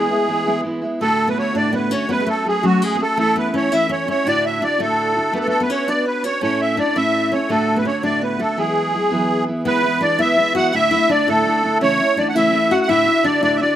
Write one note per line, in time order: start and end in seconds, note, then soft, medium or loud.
0.00 0.10 E3 medium
0.00 0.11 G#3 medium
0.00 0.10 B3 medium
0.00 0.61 G#4 medium
0.10 0.27 G#3 soft
0.10 0.28 B3 soft
0.10 0.28 E4 medium
0.27 0.46 E3 medium
0.27 0.46 G#3 medium
0.27 0.45 B3 medium
0.27 0.45 E4 medium
0.46 0.62 E3 medium
0.46 0.63 G#3 medium
0.46 0.64 B3 medium
0.46 0.65 E4 medium
0.63 0.82 E3 medium
0.63 0.83 G#3 medium
0.63 0.82 B3 medium
0.63 0.80 E4 medium
0.82 1.02 G#3 soft
0.82 1.01 B3 medium
0.82 1.00 E4 medium
1.01 1.37 D2 medium
1.01 1.37 A2 medium
1.01 1.35 D3 medium
1.01 1.37 A3 medium
1.01 1.37 D4 medium
1.01 1.38 F#4 medium
1.01 1.29 A4 loud
1.28 1.55 B3 medium
1.28 1.38 B4 medium
1.36 1.54 D3 medium
1.36 1.54 A3 medium
1.36 1.53 D4 medium
1.36 1.53 F#4 medium
1.36 1.56 C#5 medium
1.54 1.92 D2 medium
1.54 1.92 A2 medium
1.54 1.92 D3 medium
1.54 1.92 A3 medium
1.54 1.90 D4 medium
1.54 1.89 F#4 medium
1.54 1.75 D5 medium
1.73 1.91 B3 medium
1.73 1.93 B4 medium
1.90 2.08 D3 soft
1.90 2.09 A3 soft
1.90 2.08 C#4 medium
1.90 2.09 D4 soft
1.90 2.09 F#4 medium
1.90 2.11 C#5 medium
2.09 2.44 F#3 medium
2.09 2.46 A3 medium
2.09 2.21 B3 medium
2.09 2.46 C#4 medium
2.09 2.46 F#4 medium
2.09 2.29 B4 loud
2.20 2.26 G#3 medium
2.27 2.61 A3 medium
2.27 2.47 A4 medium
2.45 2.63 F#3 medium
2.45 2.63 A3 medium
2.45 2.63 C#4 medium
2.45 2.62 F#4 medium
2.45 2.65 G#4 medium
2.63 3.00 F#3 medium
2.63 3.01 A3 medium
2.63 2.99 C#4 medium
2.63 2.98 F#4 medium
2.63 2.83 F#4 medium
2.82 2.96 G#3 medium
2.82 3.01 G#4 medium
2.95 3.00 B3 medium
2.95 3.17 F#4 soft
3.00 3.17 A3 soft
3.00 3.18 C#4 soft
3.00 3.18 A4 loud
3.18 3.52 E3 medium
3.18 3.54 A3 medium
3.18 3.54 C#4 medium
3.18 3.55 E4 medium
3.18 3.37 A4 loud
3.36 3.53 B3 medium
3.36 3.55 B4 medium
3.54 3.72 E3 medium
3.54 3.71 A3 medium
3.54 3.71 C#4 medium
3.54 3.70 E4 medium
3.54 3.73 C#5 medium
3.71 4.09 E3 soft
3.71 4.08 A3 medium
3.71 4.07 C#4 medium
3.71 4.05 E4 medium
3.71 3.91 E5 loud
3.89 4.07 C#4 medium
3.89 4.09 C#5 medium
4.07 4.26 A3 soft
4.07 4.26 C#4 soft
4.07 4.25 E4 soft
4.07 4.27 C#5 loud
4.25 4.61 D2 medium
4.25 4.62 A2 medium
4.25 4.59 D3 medium
4.25 4.60 D4 medium
4.25 4.61 E4 medium
4.25 4.63 F#4 medium
4.25 4.45 D5 loud
4.46 4.63 E5 medium
4.61 4.79 D3 medium
4.61 4.79 D4 medium
4.61 4.78 E4 medium
4.61 4.78 F#4 medium
4.61 4.81 D5 medium
4.79 5.16 D2 medium
4.79 5.16 A2 medium
4.79 5.16 D3 medium
4.79 5.32 A3 medium
4.79 5.16 D4 soft
4.79 5.15 E4 medium
4.79 5.14 F#4 medium
4.79 5.34 A4 medium
5.15 5.32 D3 soft
5.15 5.32 D4 soft
5.15 5.34 E4 soft
5.15 5.33 F#4 soft
5.33 5.46 A3 medium
5.33 5.67 B3 medium
5.33 5.68 D4 medium
5.33 5.69 F#4 medium
5.33 5.38 A4 medium
5.33 5.70 B4 medium
5.40 5.47 A4 medium
5.47 5.61 A3 medium
5.47 5.62 A4 loud
5.60 5.70 B3 medium
5.60 5.71 B4 medium
5.69 5.87 B3 soft
5.69 5.88 C#4 medium
5.69 5.87 D4 medium
5.69 5.87 F#4 medium
5.69 5.86 B4 medium
5.69 5.89 C#5 medium
5.87 6.25 B3 medium
5.87 6.24 D4 medium
5.87 6.23 F#4 medium
5.87 6.22 B4 medium
5.87 6.05 D5 medium
6.05 6.24 B3 medium
6.05 6.23 B4 medium
6.23 6.40 C#4 medium
6.23 6.42 D4 soft
6.23 6.42 F#4 soft
6.23 6.42 B4 soft
6.23 6.41 C#5 medium
6.41 6.78 A2 medium
6.41 6.76 A3 medium
6.41 6.77 C#4 medium
6.41 6.78 E4 medium
6.41 6.79 A4 medium
6.41 6.61 C#5 loud
6.61 6.79 E5 medium
6.77 6.95 A3 medium
6.77 6.96 C#4 medium
6.77 6.96 D4 medium
6.77 6.95 E4 medium
6.77 6.94 A4 medium
6.77 6.97 D5 medium
6.95 7.33 A2 medium
6.95 7.32 A3 medium
6.95 7.32 C#4 medium
6.95 7.32 E4 medium
6.95 7.30 A4 medium
6.95 7.33 E5 loud
7.32 7.50 C#4 soft
7.32 7.50 E4 soft
7.32 7.50 A4 soft
7.32 7.51 C#5 medium
7.49 7.86 D2 medium
7.49 7.86 A2 medium
7.49 7.84 D3 medium
7.49 7.86 A3 medium
7.49 7.85 D4 medium
7.49 7.87 F#4 medium
7.49 7.78 A4 loud
7.76 7.85 B3 medium
7.76 7.86 B4 medium
7.85 8.03 D3 medium
7.85 8.03 A3 medium
7.85 7.90 C#4 medium
7.85 8.03 D4 medium
7.85 8.02 F#4 medium
7.85 8.03 C#5 medium
8.03 8.41 D2 soft
8.03 8.40 A2 medium
8.03 8.40 D3 medium
8.03 8.39 A3 medium
8.03 8.40 D4 medium
8.03 8.38 F#4 medium
8.03 8.22 D5 loud
8.21 8.40 B3 medium
8.21 8.41 B4 medium
8.39 8.58 D3 soft
8.39 8.58 A3 soft
8.39 8.58 D4 soft
8.39 8.58 F#4 soft
8.39 8.59 A4 medium
8.57 8.95 E3 medium
8.57 8.91 F#3 medium
8.57 9.47 G#3 medium
8.57 8.93 B3 medium
8.57 8.94 E4 medium
8.57 9.44 G#4 medium
8.57 8.95 G#4 medium
8.92 9.11 F#3 medium
8.92 9.10 B3 medium
8.92 9.10 E4 medium
8.92 9.09 G#4 medium
9.11 9.65 E3 soft
9.11 9.48 F#3 medium
9.11 9.48 B3 medium
9.11 9.48 E4 medium
9.11 9.45 G#4 medium
9.46 9.65 B3 soft
9.46 9.66 E4 soft
9.46 9.65 G#4 medium
9.65 9.83 E3 medium
9.65 9.84 G#3 medium
9.65 9.83 B3 medium
9.65 9.82 E4 medium
9.65 10.03 B4 loud
9.83 10.00 G#3 soft
9.83 10.01 B3 soft
9.83 10.01 E4 medium
10.00 10.19 E3 medium
10.00 10.19 G#3 medium
10.00 10.18 B3 medium
10.00 10.20 D4 medium
10.00 10.17 E4 medium
10.00 10.21 D5 loud
10.19 10.35 E3 medium
10.19 10.36 G#3 medium
10.19 10.37 B3 medium
10.19 10.37 E4 medium
10.19 10.53 E5 loud
10.37 10.55 E3 medium
10.37 10.56 G#3 medium
10.37 10.55 B3 medium
10.37 10.54 E4 medium
10.55 10.74 G#3 soft
10.55 10.74 B3 medium
10.55 10.73 E4 medium
10.55 10.73 F#4 medium
10.55 10.75 F#5 loud
10.73 10.91 D2 medium
10.73 10.92 A2 medium
10.73 10.92 D3 medium
10.73 10.92 A3 medium
10.73 10.91 D4 medium
10.73 10.90 E4 medium
10.73 11.11 E5 loud
10.91 11.08 D3 soft
10.91 11.08 A3 soft
10.91 11.10 D4 medium
10.91 11.09 E4 medium
11.09 11.27 D3 medium
11.09 11.27 A3 medium
11.09 11.26 D4 medium
11.09 11.26 E4 medium
11.09 11.29 D5 medium
11.27 11.46 D2 medium
11.27 11.46 A2 medium
11.27 11.43 D3 medium
11.27 11.45 A3 medium
11.27 11.45 D4 medium
11.27 11.45 E4 medium
11.27 11.78 A4 loud
11.45 11.63 D3 medium
11.45 11.64 A3 medium
11.45 11.63 D4 medium
11.45 11.62 E4 medium
11.63 11.81 D3 soft
11.63 11.81 A3 medium
11.63 11.82 D4 medium
11.63 11.81 E4 medium
11.80 11.99 C#3 medium
11.80 11.99 E3 medium
11.80 11.99 A3 medium
11.80 11.99 C#4 medium
11.80 11.97 E4 medium
11.80 12.19 C#5 loud
11.99 12.16 A3 soft
11.99 12.17 C#4 soft
11.99 12.17 E4 medium
12.16 12.34 E3 medium
12.16 12.34 A3 medium
12.16 12.33 C#4 medium
12.16 12.36 D4 medium
12.16 12.33 E4 medium
12.16 12.28 D5 loud
12.28 12.35 F#5 medium
12.34 12.54 C#3 medium
12.34 12.50 E3 medium
12.34 12.52 A3 medium
12.34 12.53 C#4 medium
12.34 12.53 E4 medium
12.34 12.72 E5 loud
12.52 12.70 E3 medium
12.52 12.71 A3 medium
12.52 12.70 C#4 medium
12.52 12.68 E4 medium
12.69 12.89 A3 soft
12.69 12.89 C#4 medium
12.69 12.88 E4 medium
12.69 12.88 F#4 medium
12.69 12.80 F#5 loud
12.81 12.89 F#5 medium
12.88 13.06 D2 medium
12.88 13.06 A2 medium
12.88 13.07 D3 medium
12.88 13.06 D4 medium
12.88 13.05 E4 medium
12.88 13.04 F#4 medium
12.88 13.26 E5 loud
13.05 13.22 D3 soft
13.05 13.23 D4 soft
13.05 13.24 E4 medium
13.05 13.24 F#4 medium
13.23 13.42 D3 medium
13.23 13.41 D4 medium
13.23 13.41 E4 medium
13.23 13.40 F#4 medium
13.23 13.41 D5 loud
13.42 13.61 D2 medium
13.42 13.61 A2 medium
13.42 13.58 D3 medium
13.42 13.59 D4 medium
13.42 13.60 E4 medium
13.42 13.60 F#4 medium
13.42 13.57 D5 loud
13.56 13.76 D3 medium
13.56 13.61 E5 medium
13.61 13.76 D4 medium
13.61 13.76 E4 medium
13.61 13.76 F#4 medium
13.61 13.75 D5 loud